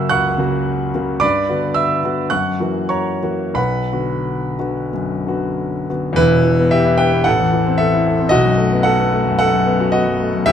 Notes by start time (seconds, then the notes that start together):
Already playing: F#2 C#3 A#3 F#4 E5 F#5 C#6 E6 F#6
0.09 C#2 F#5 C#6 F#6
0.38 C#3 A#3 F#4
0.95 C#3 A#3 F#4
1.20 G2 D5 B5 D6
1.49 D3 B3 F#4
1.74 E5 E6
2.04 D3 B3 F#4
2.30 F#2 F#5 C#6 F#6
2.60 E3 A#3 F#4
2.89 C#5 A#5 C#6
3.23 E3 A#3 F#4
3.54 B1 B4 F#5 B5
3.92 D3 B3 F#4
4.59 D3 B3 F#4
4.93 F#2
5.27 D3 B3 F#4
5.90 D3 B3 F#4
6.13 E2 B4
6.17 E1 E4
6.31 B2
6.44 E3
6.59 B3
6.71 G4 E5
6.86 E4
6.97 G4 B4 G5
7.13 B3
7.24 A1 A4 F#5
7.40 E2
7.53 E3
7.66 C4
7.78 A4 E5
7.94 E4
8.07 A4
8.19 C4
8.29 B1 F#4 D#5
8.45 F#2
8.58 A3
8.72 B3
8.83 F#4 A4 F#5
9.00 B3
9.13 A3
9.27 F#2
9.39 A3 A4 F#5
9.53 F#2
9.66 B3
9.80 F#4
9.92 B3 F#4 D#5
10.07 F#2
10.20 A3
10.35 F#2
10.46 E1 E2 G4 E5